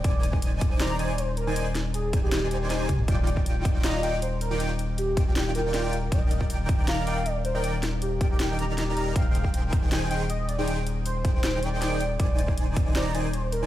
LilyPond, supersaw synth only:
\new Staff \with { instrumentName = "Supersaw synth" } { \time 4/4 \key ees \major \tempo 4 = 158 <ees ees' c'' d'' aes''>2 <ees ees' c'' d'' bes''>8 <ees ees' c'' d'' aes''>16 r4 <ees ees' c'' d'' aes''>16~ | <ees ees' c'' d'' aes''>16 r4 r16 <ees ees' c'' d'' aes''>4. <ees ees' c'' d'' aes''>8 r8 | <ees ees' f' d'' g''>2 <ees ees' f' d'' bes''>8 <ees ees' f' d'' g''>16 r4 <ees ees' f' d'' g''>16~ | <ees ees' f' d'' g''>16 r4 r16 <ees ees' f' d'' g''>4. <ees ees' f' d'' g''>8 r8 |
<ees ees' bes' d'' g''>2 <ees ees' bes' d'' bes''>8 <ees ees' bes' d'' g''>16 r4 <ees ees' bes' d'' g''>16~ | <ees ees' bes' d'' g''>16 r4 r16 <ees ees' bes' d'' g''>4 <ees ees' bes' d'' bes''>4 <ees ees' bes' d'' bes''>8 | <ees ees' aes' c'' g''>2 <ees ees' aes' c'' aes''>8 <ees ees' aes' c'' g''>16 r4 <ees ees' aes' c'' g''>16~ | <ees ees' aes' c'' g''>16 r4 r16 <ees ees' aes' c'' g''>4. <ees ees' aes' c'' g''>8 r8 |
<ees ees' c'' d'' aes''>2 <ees ees' c'' d'' bes''>8 <ees ees' c'' d'' aes''>16 r4 <ees ees' c'' d'' aes''>16 | }